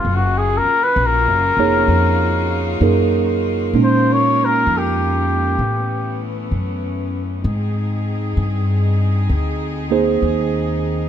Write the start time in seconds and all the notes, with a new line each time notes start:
Already playing: F4
0.05 F#1 C#3 A#3 C#4 F4 F#4
0.15 F#4
0.38 G#4
0.57 A#4
0.65 muted upright bass stroke
0.83 B4
0.96 A#1
1.06 A#4
1.27 F#1
1.57 F1 A#3 D#4 G#4 C#5
1.88 F2 D#4
2.81 F#2 A#3 D#4 G#4 A#4
3.73 A#2 G#3 A#3 C#4 D#4 A#4
3.83 C5
4.12 C#5
4.45 A#4
4.66 F2
4.78 G4
5.58 A2 E3 A3 B3 C#4
6.51 F#2
7.44 G#2 C4 D#4 G#4
8.37 G2
9.29 D2
9.91 A#3 D#4 G#4 C5
10.22 D#2